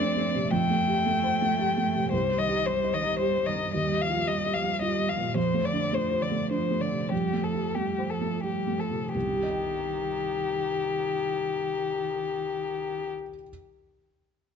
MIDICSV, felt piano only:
0, 0, Header, 1, 2, 480
1, 0, Start_track
1, 0, Tempo, 538600
1, 455, Time_signature, 3, 2, 24, 8
1, 4777, Tempo, 583090
1, 6217, Tempo, 658617
1, 7177, Tempo, 721154
1, 11255, End_track
2, 0, Start_track
2, 0, Title_t, "Felt piano"
2, 0, Program_c, 0, 0
2, 0, Control_c, 0, 64, 127
2, 0, Note_on_c, 0, 41, 48
2, 0, Note_on_c, 0, 57, 47
2, 0, Note_on_c, 0, 62, 41
2, 0, Note_on_c, 0, 72, 43
2, 146, Note_off_c, 0, 57, 0
2, 146, Note_on_c, 0, 57, 39
2, 235, Note_off_c, 0, 62, 0
2, 308, Note_on_c, 0, 48, 42
2, 396, Note_off_c, 0, 57, 0
2, 417, Note_off_c, 0, 41, 0
2, 461, Note_off_c, 0, 48, 0
2, 467, Note_on_c, 0, 41, 58
2, 472, Control_c, 0, 64, 0
2, 477, Note_off_c, 0, 72, 0
2, 605, Control_c, 0, 64, 127
2, 625, Note_on_c, 0, 57, 44
2, 780, Note_on_c, 0, 67, 47
2, 874, Note_off_c, 0, 57, 0
2, 944, Note_on_c, 0, 57, 46
2, 1031, Note_off_c, 0, 67, 0
2, 1102, Note_on_c, 0, 72, 46
2, 1192, Note_off_c, 0, 57, 0
2, 1261, Note_on_c, 0, 57, 45
2, 1351, Note_off_c, 0, 72, 0
2, 1418, Note_on_c, 0, 67, 46
2, 1511, Note_off_c, 0, 57, 0
2, 1580, Note_on_c, 0, 57, 45
2, 1669, Note_off_c, 0, 67, 0
2, 1737, Note_on_c, 0, 48, 42
2, 1831, Note_off_c, 0, 57, 0
2, 1859, Note_off_c, 0, 41, 0
2, 1892, Note_on_c, 0, 36, 55
2, 1893, Note_off_c, 0, 48, 0
2, 1907, Control_c, 0, 64, 0
2, 2026, Control_c, 0, 64, 127
2, 2056, Note_on_c, 0, 55, 41
2, 2215, Note_on_c, 0, 67, 42
2, 2309, Note_off_c, 0, 55, 0
2, 2378, Note_on_c, 0, 55, 41
2, 2468, Note_off_c, 0, 67, 0
2, 2532, Note_on_c, 0, 75, 43
2, 2629, Note_off_c, 0, 55, 0
2, 2693, Note_on_c, 0, 55, 39
2, 2787, Note_off_c, 0, 75, 0
2, 2848, Note_on_c, 0, 67, 43
2, 2947, Note_off_c, 0, 55, 0
2, 3013, Note_on_c, 0, 55, 41
2, 3104, Note_off_c, 0, 67, 0
2, 3168, Note_on_c, 0, 43, 36
2, 3267, Note_off_c, 0, 55, 0
2, 3295, Note_off_c, 0, 36, 0
2, 3328, Note_off_c, 0, 43, 0
2, 3336, Note_on_c, 0, 39, 50
2, 3345, Control_c, 0, 64, 0
2, 3473, Control_c, 0, 64, 127
2, 3490, Note_on_c, 0, 55, 39
2, 3653, Note_on_c, 0, 65, 40
2, 3745, Note_off_c, 0, 55, 0
2, 3816, Note_on_c, 0, 55, 37
2, 3907, Note_off_c, 0, 65, 0
2, 3978, Note_on_c, 0, 75, 39
2, 4069, Note_off_c, 0, 55, 0
2, 4130, Note_on_c, 0, 55, 36
2, 4230, Note_off_c, 0, 75, 0
2, 4295, Note_on_c, 0, 65, 39
2, 4387, Note_off_c, 0, 55, 0
2, 4450, Note_on_c, 0, 55, 30
2, 4551, Note_off_c, 0, 65, 0
2, 4609, Note_on_c, 0, 46, 36
2, 4711, Note_off_c, 0, 55, 0
2, 4746, Note_off_c, 0, 39, 0
2, 4770, Note_on_c, 0, 41, 42
2, 4775, Note_off_c, 0, 46, 0
2, 4795, Control_c, 0, 64, 0
2, 4924, Note_on_c, 0, 57, 34
2, 4954, Control_c, 0, 64, 127
2, 5081, Note_on_c, 0, 62, 34
2, 5174, Note_off_c, 0, 57, 0
2, 5239, Note_on_c, 0, 57, 33
2, 5333, Note_off_c, 0, 62, 0
2, 5395, Note_on_c, 0, 72, 34
2, 5493, Note_off_c, 0, 57, 0
2, 5558, Note_on_c, 0, 57, 29
2, 5653, Note_off_c, 0, 72, 0
2, 5717, Note_on_c, 0, 62, 29
2, 5817, Note_off_c, 0, 57, 0
2, 5885, Note_on_c, 0, 57, 27
2, 5981, Note_off_c, 0, 62, 0
2, 6050, Note_on_c, 0, 48, 25
2, 6151, Note_off_c, 0, 57, 0
2, 6182, Note_off_c, 0, 41, 0
2, 6219, Note_off_c, 0, 48, 0
2, 6223, Note_on_c, 0, 41, 28
2, 6234, Control_c, 0, 64, 0
2, 6358, Control_c, 0, 64, 127
2, 6378, Note_on_c, 0, 57, 27
2, 6533, Note_on_c, 0, 67, 28
2, 6624, Note_off_c, 0, 57, 0
2, 6688, Note_on_c, 0, 57, 27
2, 6784, Note_off_c, 0, 67, 0
2, 6855, Note_on_c, 0, 72, 28
2, 6946, Note_off_c, 0, 57, 0
2, 7018, Note_on_c, 0, 57, 24
2, 7115, Note_off_c, 0, 72, 0
2, 7182, Note_on_c, 0, 67, 29
2, 7275, Note_off_c, 0, 57, 0
2, 7339, Note_on_c, 0, 57, 23
2, 7431, Note_off_c, 0, 67, 0
2, 7496, Note_on_c, 0, 48, 25
2, 7590, Note_off_c, 0, 57, 0
2, 7627, Note_off_c, 0, 41, 0
2, 7653, Note_off_c, 0, 48, 0
2, 7657, Note_on_c, 0, 36, 32
2, 7669, Control_c, 0, 64, 0
2, 7704, Note_on_c, 0, 48, 34
2, 7752, Note_on_c, 0, 55, 35
2, 7796, Note_on_c, 0, 67, 30
2, 7816, Control_c, 0, 64, 127
2, 7845, Note_on_c, 0, 75, 30
2, 7891, Note_on_c, 0, 79, 31
2, 10266, Note_off_c, 0, 36, 0
2, 10313, Note_off_c, 0, 48, 0
2, 10361, Note_off_c, 0, 55, 0
2, 10405, Note_off_c, 0, 67, 0
2, 10454, Note_off_c, 0, 75, 0
2, 10500, Note_off_c, 0, 79, 0
2, 10552, Control_c, 0, 64, 0
2, 11255, End_track
0, 0, End_of_file